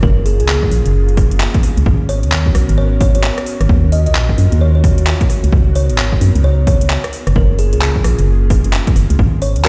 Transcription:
Already playing: A#3 C#4 F4 G#4
0.03 F#1 A#4, kick
0.26 G#4, open hi-hat
0.40 C#2 G#4, closed hi-hat
0.49 clap
0.63 kick
0.71 A#1, open hi-hat
0.86 F#1, closed hi-hat
1.09 closed hi-hat
1.17 kick, cross-stick, open hi-hat
1.31 closed hi-hat
1.40 clap, open hi-hat
1.54 kick, closed hi-hat
1.63 cross-stick, open hi-hat
1.77 C#2, closed hi-hat
1.86 G#1 B3 F#4 A#4, kick
2.09 C#5, open hi-hat
2.23 D#2, closed hi-hat
2.32 clap
2.46 kick
2.55 B1, cross-stick, open hi-hat
2.69 G#1, closed hi-hat
2.78 C#5
3.01 C#5, kick, open hi-hat
3.15 C#5, closed hi-hat
3.24 clap
3.38 cross-stick, closed hi-hat
3.46 open hi-hat
3.61 G#1, cross-stick, closed hi-hat
3.69 D#2 F4 F#4 A#4, kick
3.92 D#5, open hi-hat
4.06 A#1 D#5, closed hi-hat
4.15 clap
4.29 kick
4.38 F#2, open hi-hat
4.52 D#2, closed hi-hat
4.61 C#5
4.75 C#5
4.84 kick, cross-stick, open hi-hat
4.98 closed hi-hat
5.07 clap, open hi-hat
5.21 kick, closed hi-hat
5.30 B3 D#4 A#4, cross-stick, open hi-hat
5.44 C#2, closed hi-hat
5.53 C#2, kick
5.75 C#5, open hi-hat
5.90 G#1, closed hi-hat
5.98 clap
6.12 kick
6.21 F#2, open hi-hat
6.35 C#2, closed hi-hat
6.44 C#5
6.67 C#5, kick, open hi-hat
6.81 closed hi-hat
6.90 clap
7.04 cross-stick, closed hi-hat
7.13 A#3 C#4 F4 G#4, open hi-hat
7.27 F#1, cross-stick, closed hi-hat
7.36 F#1 A#4, kick
7.59 G#4, open hi-hat
7.73 C#2 G#4, closed hi-hat
7.81 clap
7.96 kick
8.04 A#1, cross-stick, open hi-hat
8.19 F#1, closed hi-hat
8.50 kick, cross-stick, open hi-hat
8.64 closed hi-hat
8.73 clap, open hi-hat
8.87 kick, closed hi-hat
8.96 F#1, cross-stick, open hi-hat
9.10 C#2, closed hi-hat
9.19 G#1 F#3 B3 C#4 A#4, kick
9.42 C#5, open hi-hat
9.56 D#2, closed hi-hat
9.65 B3 F#4 A#4 C#5, clap

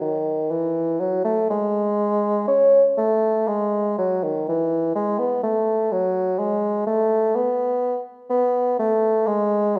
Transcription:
0.01 D#3
0.51 E3
1.00 F#3
1.25 A3
1.50 G#3
2.48 C#4
2.98 A3
3.48 G#3
3.98 F#3
4.23 D#3
4.49 E3
4.95 G#3
5.19 B3
5.43 A3
5.92 F#3
6.39 G#3
6.87 A3
7.36 B3
8.30 B3
8.79 A3
9.27 G#3

